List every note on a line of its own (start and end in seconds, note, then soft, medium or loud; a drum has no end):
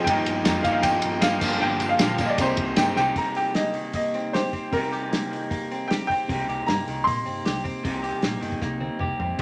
0.00 2.34 F4 medium
0.04 0.19 G1 loud
0.04 0.44 G2 loud
0.04 1.41 D#5 medium
0.04 0.41 G5 medium
0.04 2.37 G5 medium
0.04 kick loud
0.04 ride loud
0.09 0.45 D#3 loud
0.09 0.45 F3 loud
0.09 0.46 A#3 medium
0.09 0.46 D#4 loud
0.09 0.47 G4 loud
0.26 0.39 G1 medium
0.26 ride medium
0.45 0.58 F2 medium
0.45 0.62 G2 medium
0.45 0.63 D#3 medium
0.45 0.64 F3 medium
0.45 0.65 A#3 medium
0.45 0.64 D#4 loud
0.45 0.66 G4 medium
0.45 snare loud
0.45 ride loud
0.45 tambourine medium
0.63 0.77 G1 medium
0.63 0.81 G2 medium
0.63 0.82 D#3 medium
0.63 0.81 F3 medium
0.63 0.83 A#3 medium
0.63 0.82 D#4 medium
0.63 0.83 G4 medium
0.63 0.71 F5 medium
0.63 kick medium
0.63 ride medium
0.63 tambourine medium
0.72 0.83 F5 medium
0.82 0.97 G1 medium
0.82 1.20 G2 medium
0.82 1.21 D#3 medium
0.82 1.22 F3 medium
0.82 1.22 A#3 medium
0.82 1.22 D#4 loud
0.82 1.23 G4 loud
0.82 1.19 G5 medium
0.82 kick loud
0.82 ride loud
0.82 tambourine medium
1.02 1.17 G1 medium
1.02 ride medium
1.02 tambourine soft
1.21 1.34 G1 medium
1.21 1.40 G2 medium
1.21 1.40 D#3 medium
1.21 1.41 F3 medium
1.21 1.43 A#3 medium
1.21 1.41 D#4 medium
1.21 1.43 G4 medium
1.21 1.62 F5 medium
1.21 snare loud
1.21 ride loud
1.21 tambourine medium
1.41 1.54 G1 medium
1.41 1.59 G2 loud
1.41 1.60 D3 loud
1.41 1.61 F3 loud
1.41 1.60 A#3 medium
1.41 1.61 D4 loud
1.41 1.61 G4 loud
1.41 2.38 A#4 medium
1.41 kick medium
1.41 tambourine medium
1.41 crash loud
1.60 1.73 G1 loud
1.60 1.99 G2 medium
1.60 1.99 D3 medium
1.60 2.00 F3 medium
1.60 2.01 A#3 medium
1.60 2.01 D4 loud
1.60 2.01 G4 loud
1.60 1.91 G5 medium
1.79 1.92 G1 loud
1.79 ride medium
1.79 tambourine medium
1.89 2.27 F5 medium
1.99 2.25 A#1 medium
1.99 2.18 G2 medium
1.99 2.19 D3 medium
1.99 2.19 F3 medium
1.99 2.19 A#3 medium
1.99 2.20 D4 medium
1.99 2.20 G4 loud
1.99 snare loud
1.99 ride loud
1.99 tambourine medium
2.18 2.37 G2 medium
2.18 2.38 D3 medium
2.18 2.38 F3 medium
2.18 2.38 A#3 medium
2.18 2.38 D4 medium
2.18 2.39 G4 medium
2.18 kick medium
2.18 ride medium
2.18 tambourine medium
2.25 2.28 D#5 medium
2.30 2.39 D5 medium
2.38 2.51 C2 medium
2.38 2.76 C3 loud
2.38 2.77 D#3 medium
2.38 2.76 G3 medium
2.38 2.77 A#3 loud
2.38 2.78 C4 medium
2.38 2.78 D#4 medium
2.38 3.16 D#4 medium
2.38 2.78 G4 loud
2.38 3.16 C5 medium
2.38 2.94 C5 medium
2.38 3.16 A#5 medium
2.38 kick loud
2.38 ride medium
2.38 tambourine medium
2.57 2.70 C2 medium
2.57 kick medium
2.57 ride medium
2.76 2.90 G1 loud
2.76 2.96 C3 medium
2.76 2.97 D#3 loud
2.76 2.96 G3 medium
2.76 2.97 A#3 medium
2.76 2.98 C4 medium
2.76 2.97 D#4 medium
2.76 2.97 G4 medium
2.76 2.95 G5 medium
2.76 snare loud
2.76 ride medium
2.76 tambourine medium
2.96 3.10 C2 medium
2.96 3.15 C3 medium
2.96 3.15 D#3 medium
2.96 3.15 G3 medium
2.96 3.16 A#3 medium
2.96 3.16 C4 medium
2.96 3.16 D#4 medium
2.96 3.16 G4 loud
2.96 3.17 G5 medium
2.96 snare medium
2.96 tambourine medium
3.16 4.73 C3 medium
3.16 4.73 G3 medium
3.16 4.75 A#3 medium
3.16 4.75 D#4 medium
3.16 3.35 A#5 medium
3.16 kick medium
3.16 open hi-hat medium
3.35 4.34 G4 medium
3.35 3.56 G5 medium
3.35 open hi-hat soft
3.55 3.94 A#3 medium
3.55 3.91 D#5 medium
3.55 snare loud
3.55 open hi-hat medium
3.74 4.72 D#3 medium
3.74 open hi-hat soft
3.93 5.10 A#3 medium
3.93 4.31 D#5 medium
3.93 kick medium
3.93 open hi-hat medium
4.14 4.53 C4 medium
4.14 open hi-hat soft
4.33 4.92 G4 medium
4.33 4.73 C5 medium
4.33 snare loud
4.33 open hi-hat medium
4.53 5.53 C4 medium
4.53 kick medium
4.53 open hi-hat soft
4.73 6.30 C3 medium
4.73 6.29 G3 medium
4.73 6.31 A#3 medium
4.73 6.33 D#4 medium
4.73 5.85 A#4 medium
4.73 kick loud
4.73 open hi-hat medium
4.93 5.90 G4 medium
4.93 open hi-hat soft
5.11 5.50 A#3 medium
5.11 snare loud
5.11 open hi-hat medium
5.31 6.28 D#3 medium
5.31 open hi-hat soft
5.50 6.68 A#3 medium
5.50 kick loud
5.50 open hi-hat medium
5.71 6.11 C4 medium
5.71 open hi-hat soft
5.88 6.49 G4 medium
5.88 6.06 G5 medium
5.88 snare loud
5.88 open hi-hat medium
6.07 6.44 G5 loud
6.07 kick medium
6.07 open hi-hat soft
6.12 7.10 C4 medium
6.29 6.41 C2 medium
6.29 7.84 C3 medium
6.29 7.85 G3 medium
6.29 7.86 A#3 medium
6.29 7.87 D#4 medium
6.29 kick loud
6.29 open hi-hat medium
6.47 6.60 C2 medium
6.47 7.45 G4 medium
6.47 open hi-hat soft
6.67 6.80 G2 medium
6.67 7.07 A#3 medium
6.67 7.07 A#5 medium
6.67 snare loud
6.67 open hi-hat medium
6.87 6.99 C2 medium
6.87 7.85 D#3 medium
6.87 open hi-hat soft
7.04 7.19 A#2 medium
7.04 8.04 A#3 medium
7.04 8.96 C6 medium
7.04 kick medium
7.04 open hi-hat medium
7.26 7.39 G1 medium
7.26 7.63 C4 medium
7.26 open hi-hat soft
7.45 7.70 C2 medium
7.45 8.02 G4 medium
7.45 snare loud
7.45 open hi-hat medium
7.64 8.62 C4 medium
7.64 kick medium
7.64 open hi-hat soft
7.84 8.09 C2 medium
7.84 8.81 C3 medium
7.84 9.39 G3 medium
7.84 9.40 A#3 medium
7.84 9.40 D#4 medium
7.84 kick medium
7.84 open hi-hat medium
8.03 8.99 G4 medium
8.03 open hi-hat soft
8.22 8.35 A#1 medium
8.22 8.61 A#3 medium
8.22 snare loud
8.22 open hi-hat medium
8.41 8.54 G1 medium
8.41 9.38 D#3 medium
8.41 open hi-hat soft
8.52 kick medium
8.61 8.86 C2 medium
8.61 9.38 A#3 medium
8.61 kick medium
8.61 snare soft
8.80 9.19 C4 medium
8.80 high tom medium
8.99 9.12 C2 medium
8.99 9.39 G4 medium
8.99 mid tom medium
9.19 9.32 F2 medium
9.19 9.38 C4 medium
9.19 floor tom medium
9.38 9.42 C3 medium
9.38 crash medium